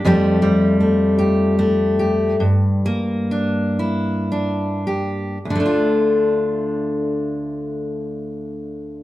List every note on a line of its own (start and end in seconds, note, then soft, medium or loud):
0.05 2.34 F2 medium
0.05 2.34 F3 medium
0.05 0.42 G3 medium
0.05 0.79 A3 medium
0.05 1.18 G4 medium
0.42 2.83 G3 medium
0.80 1.57 A3 soft
1.19 1.98 G4 medium
1.59 2.40 A3 medium
1.99 2.35 G4 soft
2.40 5.36 G2 medium
2.86 5.37 A#3 medium
3.31 4.30 D4 soft
3.79 4.85 E4 soft
4.32 5.37 D4 soft
4.87 5.37 G4 soft
5.45 9.03 D2 medium
5.50 9.03 D3 medium
5.55 9.03 A3 soft
5.60 9.03 D4 soft
5.66 9.03 F4 soft